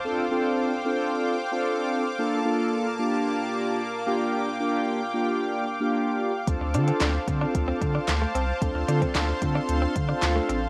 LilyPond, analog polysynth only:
\new Staff \with { instrumentName = "Analog polysynth" } { \time 4/4 \key d \minor \tempo 4 = 112 <c' d' f' a'>8 <c' d' f' a'>8. r16 <c' d' f' a'>4 r16 <c' d' f' a'>4 r16 | <bes d' f' a'>8 <bes d' f' a'>8. r16 <bes d' f' g'>4. r8 <bes d' f' g'>8~ | <bes d' f' g'>16 r16 <bes d' f' g'>8. r16 <bes d' f' g'>4 r16 <bes d' f' g'>4 r16 | <c' d' f' a'>8 <c' d' f' a'>8. r16 <c' d' f' a'>4. r4 |
<c' d' f' a'>8 <c' d' f' a'>8. r16 <c' d' f' a'>4 r16 <c' d' f' a'>4 r16 | }